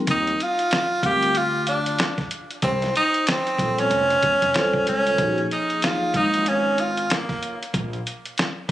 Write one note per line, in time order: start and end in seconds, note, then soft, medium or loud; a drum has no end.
0.07 0.32 D#2 loud
0.07 0.32 G3 medium
0.07 0.32 C4 medium
0.07 0.44 D#4 medium
0.07 0.33 F4 medium
0.07 0.33 A#4 medium
0.07 kick loud
0.07 closed hi-hat medium
0.27 closed hi-hat soft
0.40 1.07 F4 loud
0.40 closed hi-hat medium
0.59 closed hi-hat soft
0.71 snare loud
0.71 closed hi-hat medium
1.02 1.95 D2 medium
1.02 1.27 G3 medium
1.02 1.28 C4 medium
1.02 1.28 F4 medium
1.02 1.39 G4 loud
1.02 1.29 A#4 medium
1.02 kick loud
1.02 closed hi-hat medium
1.23 closed hi-hat medium
1.35 1.68 F4 loud
1.35 closed hi-hat medium
1.67 2.28 D4 medium
1.67 closed hi-hat medium
1.86 closed hi-hat medium
1.99 snare loud
1.99 closed hi-hat medium
2.18 kick medium
2.18 snare soft
2.18 closed hi-hat soft
2.31 closed hi-hat medium
2.51 closed hi-hat soft
2.62 2.87 C2 loud
2.62 2.93 C4 medium
2.62 kick loud
2.62 closed hi-hat medium
2.82 snare soft
2.82 closed hi-hat soft
2.96 3.30 D#4 loud
2.96 closed hi-hat medium
3.14 closed hi-hat soft
3.27 3.82 C4 loud
3.27 snare loud
3.27 closed hi-hat medium
3.47 closed hi-hat soft
3.57 3.83 A#1 medium
3.57 3.82 G3 medium
3.57 3.83 C4 medium
3.57 3.83 F4 medium
3.57 3.84 A4 medium
3.57 kick medium
3.57 closed hi-hat medium
3.78 4.87 C#4 loud
3.78 closed hi-hat medium
3.90 4.15 F1 loud
3.90 closed hi-hat medium
4.10 closed hi-hat soft
4.22 4.38 G1 medium
4.22 kick medium
4.22 closed hi-hat medium
4.42 4.52 F1 loud
4.42 closed hi-hat medium
4.53 4.79 F2 loud
4.53 5.17 G3 medium
4.53 5.19 F4 medium
4.53 5.19 A4 medium
4.53 5.18 C5 medium
4.53 snare loud
4.53 closed hi-hat medium
4.74 kick medium
4.87 5.11 C#2 medium
4.87 5.47 C#4 loud
4.87 closed hi-hat medium
5.07 closed hi-hat medium
5.17 5.43 A#1 loud
5.17 6.08 F3 medium
5.17 6.09 A#3 medium
5.17 6.10 D#4 medium
5.17 5.27 F#4 medium
5.17 kick loud
5.17 closed hi-hat medium
5.27 6.13 G#4 medium
5.38 closed hi-hat soft
5.51 5.85 D#4 medium
5.51 closed hi-hat medium
5.70 closed hi-hat soft
5.82 6.18 F4 loud
5.82 snare loud
5.82 closed hi-hat medium
6.13 7.06 G#1 medium
6.13 6.38 F3 medium
6.13 6.39 A#3 medium
6.13 6.39 D#4 medium
6.13 6.50 D#4 loud
6.13 6.40 F4 medium
6.13 kick medium
6.13 closed hi-hat medium
6.34 closed hi-hat medium
6.46 6.82 C#4 medium
6.46 closed hi-hat medium
6.78 7.14 F4 medium
6.78 closed hi-hat medium
6.97 closed hi-hat medium
7.10 7.62 A#3 medium
7.10 snare loud
7.10 closed hi-hat medium
7.29 kick medium
7.29 snare soft
7.29 closed hi-hat soft
7.43 closed hi-hat medium
7.63 closed hi-hat medium
7.74 7.98 A#1 loud
7.74 kick loud
7.74 closed hi-hat medium
7.93 closed hi-hat soft
8.07 closed hi-hat medium
8.25 closed hi-hat soft
8.38 snare loud
8.38 closed hi-hat medium
8.68 8.71 G#3 medium